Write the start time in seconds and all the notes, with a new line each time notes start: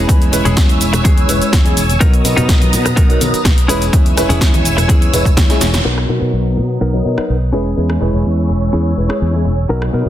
Already playing: C#4 E4 G#4 C#5 G#5 E6
0.07 E2 G#3 C#4 E4 B4, kick, closed hi-hat, tambourine, cabasa
0.22 closed hi-hat, cabasa
0.31 E1 G#3 C#4 E4 B4, muted clean electric guitar stroke, open hi-hat, tambourine, cabasa
0.45 E1 C#4 E4 G#4, closed hi-hat, tambourine, low conga, cabasa
0.57 E2, kick, snare, closed hi-hat, tambourine, cabasa
0.69 closed hi-hat, cabasa
0.81 E1, open hi-hat, tambourine, cabasa
0.93 muted clean electric guitar stroke, cross-stick, closed hi-hat, tambourine, low conga, cabasa
1.04 E2 C#4 E4 G#4, kick, closed hi-hat, tambourine, high conga, cabasa
1.18 closed hi-hat, cabasa
1.28 E1 G#3 C#4 E4 B4, open hi-hat, tambourine, cabasa
1.42 muted fingered electric bass stroke, closed hi-hat, tambourine, cabasa
1.53 E2, muted clean electric guitar stroke, kick, snare, closed hi-hat, cabasa
1.64 G#3 C#4 E4 G#4, closed hi-hat, cabasa
1.77 E1, open hi-hat, tambourine, cabasa
1.90 closed hi-hat, tambourine, high conga, cabasa
2.00 B1 F#3 B3 D#4 A#4 A#5 D#6, kick, closed hi-hat, tambourine, cabasa
2.14 closed hi-hat, cabasa
2.24 B2 F#3 B3 D#4 A#4, muted clean electric guitar stroke, open hi-hat, tambourine, cabasa
2.36 B2 B3 D#4 A#4, closed hi-hat, tambourine, low conga, cabasa
2.49 B1, kick, snare, closed hi-hat, cabasa
2.62 closed hi-hat, high conga, cabasa
2.73 B2, open hi-hat, tambourine, cabasa
2.85 muted clean electric guitar stroke, cross-stick, closed hi-hat, tambourine, low conga, cabasa
2.96 B1 B3 D#4 A#4, kick, closed hi-hat, tambourine, cabasa
3.09 F#3 B3 D#4 A#4, closed hi-hat, cabasa
3.20 B2 F#3 B3 D#4 A#4, open hi-hat, tambourine, high conga, cabasa
3.33 muted fingered electric bass stroke, closed hi-hat, tambourine, cabasa
3.44 B1, muted clean electric guitar stroke, kick, snare, closed hi-hat, tambourine, high conga, cabasa
3.58 closed hi-hat, cabasa
3.68 E1 G#3 C#4 E4 G#4 B4 C#5 G#5 E6, open hi-hat, tambourine, cabasa
3.81 closed hi-hat, tambourine, cabasa
3.93 E2 G#3 C#4 E4 B4, kick, closed hi-hat, cabasa
4.06 closed hi-hat, cabasa
4.17 E1 G#3 C#4 E4 B4, muted clean electric guitar stroke, cross-stick, open hi-hat, tambourine, cabasa
4.29 E1 C#4 E4 G#4, open hi-hat, tambourine, low conga, cabasa
4.41 E2, kick, snare, closed hi-hat, tambourine, cabasa
4.54 closed hi-hat, high conga, cabasa
4.65 E1, open hi-hat, tambourine, cabasa
4.77 muted clean electric guitar stroke, cross-stick, closed hi-hat, tambourine, low conga, cabasa
4.89 E2 C#4 E4 G#4, kick, closed hi-hat, tambourine, high conga, cabasa
5.02 closed hi-hat, cabasa
5.13 E1 G#3 C#4 E4 B4, open hi-hat, tambourine, low conga, cabasa
5.25 kick, closed hi-hat, cabasa
5.37 E2, muted clean electric guitar stroke, kick, snare, closed hi-hat, tambourine, cabasa
5.49 G#3 C#4 E4 G#4, snare, closed hi-hat, cabasa
5.61 E1, snare, open hi-hat, tambourine, cabasa
5.73 snare, closed hi-hat, tambourine, high conga, cabasa
5.85 B1 F#3 B3 D#4 A#4 A#5 D#6
5.98 cross-stick
6.08 B2 F#3 B3 D#4 A#4
6.22 B2
6.33 B1
6.57 B2, muted clean electric guitar stroke
6.81 B1 B3 D#4 A#4
6.93 F#3 B3 D#4 A#4
7.05 B2 F#3 B3 D#4 A#4
7.17 B3 D#4 A#4, muted fingered electric bass stroke, cross-stick
7.30 B1
7.53 E1 G#3 C#4 E4 G#4 B4 C#5 G#5 E6
7.76 E2 G#3 C#4 E4 B4
7.90 cross-stick
8.00 E1 G#3 C#4 E4 G#4 B4
8.14 E1
8.25 E2
8.49 E1, muted clean electric guitar stroke
8.73 E2 C#4 E4 G#4
8.96 E1 G#3 C#4 E4 B4
9.09 C#4 E4 G#4, muted fingered electric bass stroke, cross-stick
9.21 E2
9.33 G#3 C#4 E4 G#4
9.45 E1, muted clean electric guitar stroke
9.69 B1 F#3 B3 D#4 A#4 A#5 D#6
9.82 cross-stick
9.92 B2 F#3 B3 D#4 A#4
10.06 B2